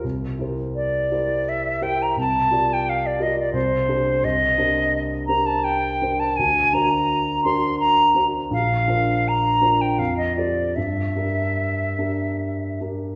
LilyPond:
<<
  \new Staff \with { instrumentName = "Flute" } { \time 3/4 \key g \minor \tempo 4 = 84 r4 d''4 e''8 g''16 bes''16 | a''8. g''16 f''16 d''16 ees''16 d''16 c''4 | ees''4. bes''16 a''16 g''8. a''16 | aes''8 ais''4 c'''8 ais''8. r16 |
f''4 bes''8. g''16 f''16 ees''16 d''8 | e''2~ e''8 r8 | }
  \new Staff \with { instrumentName = "Grand piano" } { \time 3/4 \key g \minor c,8 <e' g' bes' c''>4 <e' g' bes' c''>4 <e' g' bes' c''>8 | c,8 <f' g' bes' d''>4 <f' g' bes' d''>8 c,8 <d' g' a' c''>8 | c,8 <d' g' bes' c''>4 <d' g' bes' c''>4 <d' g' bes' c''>8 | d,8 <d' fis' ais' c''>4 <d' fis' ais' c''>4 <d' fis' ais' c''>8 |
bes,,8 <d' f' bes' c''>4 <d' f' bes' c''>8 f,8 <f' g' a' c''>8 | g,8 <d' g' bes'>4 <d' g' bes'>4 <d' g' bes'>8 | }
>>